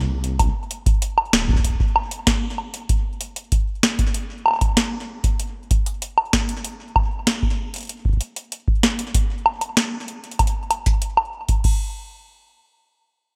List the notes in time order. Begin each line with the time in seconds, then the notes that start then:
Already playing: C2
0.24 closed hi-hat
0.39 kick, closed hi-hat, high woodblock
0.71 closed hi-hat
0.86 kick, closed hi-hat
1.02 closed hi-hat
1.18 high woodblock
1.33 D1, snare
1.49 kick
1.54 kick
1.59 kick
1.64 kick, closed hi-hat
1.70 kick
1.75 kick
1.80 kick
1.96 high woodblock
2.11 closed hi-hat
2.27 kick, snare, closed hi-hat
2.58 high woodblock
2.74 closed hi-hat
2.89 kick, closed hi-hat
3.21 closed hi-hat
3.36 closed hi-hat
3.52 kick, closed hi-hat
3.83 snare
3.99 kick, closed hi-hat
4.14 closed hi-hat
4.46 high woodblock
4.48 high woodblock
4.51 high woodblock
4.54 high woodblock
4.56 high woodblock
4.59 closed hi-hat, high woodblock
4.61 kick, high woodblock
4.77 snare, closed hi-hat
5.24 kick, closed hi-hat
5.40 closed hi-hat
5.71 kick, closed hi-hat
5.86 closed hi-hat
6.02 closed hi-hat
6.18 high woodblock
6.33 kick, snare
6.49 closed hi-hat
6.64 closed hi-hat
6.96 kick, high woodblock
7.27 snare, closed hi-hat
7.43 kick
7.74 closed hi-hat
7.76 closed hi-hat
7.78 closed hi-hat
7.81 closed hi-hat
7.83 closed hi-hat
7.85 closed hi-hat
7.87 closed hi-hat
7.89 closed hi-hat
8.05 kick
8.09 kick
8.13 kick
8.17 kick, closed hi-hat
8.36 closed hi-hat
8.52 closed hi-hat
8.68 kick
8.83 snare
8.99 closed hi-hat
9.14 kick, closed hi-hat
9.46 high woodblock
9.61 closed hi-hat, high woodblock
9.77 snare, closed hi-hat
10.08 closed hi-hat
10.24 closed hi-hat
10.31 closed hi-hat
10.39 kick, closed hi-hat, high woodblock
10.47 closed hi-hat
10.71 closed hi-hat, high woodblock
10.86 kick, closed hi-hat
11.02 closed hi-hat
11.17 high woodblock
11.49 kick, closed hi-hat
11.64 kick, crash